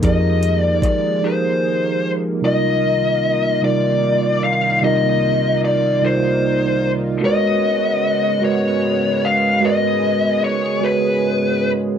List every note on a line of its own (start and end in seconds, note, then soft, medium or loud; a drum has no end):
0.00 0.79 F2 loud
0.00 2.39 D#3 medium
0.00 1.22 F3 medium
0.00 2.39 F3 medium
0.00 2.41 G#3 medium
0.00 2.39 A#3 medium
0.00 0.02 D#4 medium
0.00 1.03 D#4 medium
0.00 0.04 G4 medium
0.00 1.04 G4 medium
0.00 0.05 G#4 medium
0.00 0.06 A#4 medium
0.00 kick loud
0.00 closed hi-hat medium
0.05 1.05 G#4 medium
0.05 1.05 A#4 medium
0.05 0.61 D#5 loud
0.43 closed hi-hat medium
0.61 0.85 D5 loud
0.82 1.25 D5 loud
0.82 muted fingered electric bass stroke soft
0.82 kick medium
0.82 closed hi-hat medium
1.22 2.23 F3 medium
1.22 2.24 D#4 medium
1.22 2.24 G4 medium
1.22 2.25 G#4 medium
1.22 2.10 C5 medium
1.26 2.25 A#4 medium
2.42 7.19 C2 medium
2.42 3.43 C3 medium
2.42 7.19 D#3 medium
2.42 3.43 G3 medium
2.42 7.19 A#3 medium
2.42 7.19 D#4 medium
2.42 3.44 D#4 medium
2.42 7.19 F4 medium
2.42 3.44 F4 medium
2.42 3.45 A#4 medium
2.42 3.60 D#5 loud
2.46 3.45 D#5 medium
3.62 4.63 C3 medium
3.62 4.63 G3 medium
3.62 4.64 D#4 medium
3.62 4.64 F4 medium
3.62 4.65 A#4 medium
3.62 4.44 D5 loud
3.66 4.65 D5 medium
4.44 4.81 F5 medium
4.82 5.83 C3 medium
4.82 5.84 G3 medium
4.82 5.84 D#4 medium
4.82 5.84 F4 medium
4.82 5.85 A#4 medium
4.82 5.60 D#5 loud
4.87 5.85 D#5 medium
5.65 6.05 D5 loud
6.01 7.03 C3 medium
6.01 7.03 G3 medium
6.01 7.04 D#4 medium
6.01 7.04 F4 medium
6.01 7.05 A#4 medium
6.01 6.90 C5 loud
6.06 7.05 D5 medium
7.21 11.98 G#2 medium
7.21 11.98 C#3 medium
7.21 8.23 G#3 medium
7.21 11.98 G#3 medium
7.21 11.98 B3 medium
7.21 8.23 F#4 medium
7.21 9.61 F#4 medium
7.21 8.24 A#4 medium
7.21 8.24 B4 medium
7.21 8.44 D#5 loud
7.26 8.25 C#5 loud
8.41 9.43 G#3 medium
8.41 9.43 F#4 medium
8.41 9.44 A#4 medium
8.41 9.44 B4 medium
8.41 9.26 C#5 loud
8.46 9.45 D#5 medium
9.25 9.65 F5 loud
9.61 10.63 G#3 medium
9.61 10.63 F#4 medium
9.61 11.98 G#4 medium
9.61 10.64 A#4 medium
9.61 10.64 B4 medium
9.61 10.44 D#5 loud
9.66 10.65 D#5 medium
10.44 10.85 C#5 loud
10.81 11.83 G#3 medium
10.81 11.83 F#4 medium
10.81 11.84 G#4 medium
10.81 11.69 B4 loud
10.81 11.85 B4 medium
10.86 11.85 C#5 medium